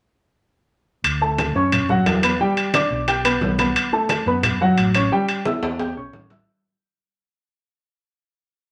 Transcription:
1.04 D2, high conga, high timbale
1.21 A3 A4 A5, high conga
1.38 high conga, high timbale
1.55 F#2 C#4 C#5 C#6, high conga
1.72 high conga, low conga, high timbale
1.89 F#3 F#4 F#5, high conga, low conga
2.06 E2, high conga, high timbale, low timbale
2.23 B3 B4 B5, high conga, high timbale
2.40 G3 G4 G5, high conga
2.57 high conga, high timbale
2.74 D4 D5 D6, high conga, high timbale
2.90 B1, high conga
3.08 G4 G5 G6, high conga, high timbale
3.24 B3 B4 B5, high conga, high timbale
3.41 B1, high conga, low timbale
3.58 B3 B4 B5, high conga, high timbale
3.75 high conga, high timbale
3.92 A3 A4 A5, high conga
4.09 high conga, high timbale
4.26 F#2 B3 B4 B5, high conga
4.43 high conga, low conga, high timbale
4.60 F#3 F#4 F#5, high conga
4.77 A1, high conga, high timbale
4.94 C#4 C#5 C#6, high conga, high timbale
5.11 G3 G4 G5, high conga
5.29 high conga, high timbale
5.45 E4 E5 E6, high conga, high timbale
5.62 E2, high conga, high timbale
5.79 G4 G5 G6, high conga, high timbale
5.96 B1 C#4 C#5 C#6, high conga
6.13 A1, high conga, low timbale
6.30 E4 E5 E6, high conga, low timbale

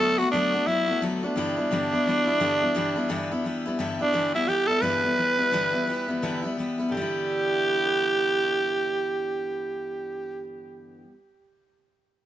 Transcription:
Already playing: D3 A4
0.00 F#3 A3 B3 F#4
0.18 B3 F#4
0.22 A3
0.31 D3 F#3 A3 B3 D4 F#4
0.54 A3 B3 F#4
0.67 F#3 A3 B3 E4 F#4
0.87 A3 B3 F#4
1.01 D3 F#3 A3 B3 F#4
1.23 A3 B3 D4 F#4
1.36 G2 D3 E3 G3 B3 E4
1.57 E3 G3 B3 E4
1.71 G2 D3 E3 G3 B3 E4
1.92 E3 G3 B3 E4
2.06 E3 G3 B3 E4
2.27 E3 G3 B3 E4
2.40 G2 D3 E3 G3 B3 E4
2.61 E3 G3 B3 E4
2.74 G2 D3 E3 G3 B3 E4
2.95 E3 G3 B3 E4
3.09 G2 D3 E3 G3 B3 E4
3.31 E3 G3 B3 E4
3.44 E3 G3 B3 E4
3.65 E3 G3 B3 E4
3.79 G2 D3 E3 G3 B3 E4
3.99 E3 G3 B3 D4 E4
4.13 G2 D3 E3 G3 B3 E4
4.34 E3 G3 B3 E4
4.47 E3 G3 B3 E4 G4
4.67 G3 B3 E4 A4
4.71 E3
4.81 G2 D3 E3 G3 B3 E4 B4
5.03 E3 G3 B3 E4
5.16 E3 G3 B3 E4
5.37 E3 G3 B3 E4
5.52 G2 D3 E3 G3 B3 E4
5.72 E3 G3 B3 E4
5.87 E3 G3 B3 E4
6.08 E3 G3 B3 E4
6.22 G2 D3 E3 G3 B3 E4
6.42 E3 G3 B3 E4
6.57 E3 G3 B3 E4
6.78 E3 G3 B3 E4
6.89 G2 D3 G4
6.95 E3 G3
6.99 B3 E4

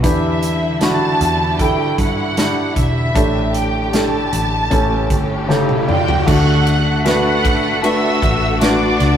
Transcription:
Already playing: D3
0.03 E2 E3 G3 D4 E4 G4 E5, kick, closed hi-hat
0.43 closed hi-hat
0.81 D4 E4 F#4 A5, snare, closed hi-hat
1.21 E2, closed hi-hat
1.59 D4 E4 A4 G5, kick, closed hi-hat
1.98 G2 F#5, kick, closed hi-hat
2.37 D4 E4 G4, snare, closed hi-hat
2.76 E1 E5, kick, closed hi-hat
3.14 A1 A2 A3 D4 G4 A4, kick, closed hi-hat, riser
3.54 G5, closed hi-hat
3.92 D4 G4 A4 A5, snare, closed hi-hat
4.33 A1, closed hi-hat
4.71 A1 A2 C#3 A3 C#4 G4 A4, kick, closed hi-hat
5.10 G1, kick, closed hi-hat
5.49 C#3 G4 A4 A5, snare
5.69 high tom
5.88 G4 D5 G5, mid tom
6.08 floor tom
6.26 D2 D3 A3 D4 F#4 A4 F#5 F#6, kick, crash
6.67 ride
7.05 A3 D4 F#4 B4 F#5 F#6, snare, ride
7.45 A1, kick, ride
7.82 A3 D4 F#4 B4 E5 E6, ride
8.22 A1, kick, ride
8.60 A3 D4 F#4 B4 D5 D6, snare, ride
9.00 C#2, snare, ride

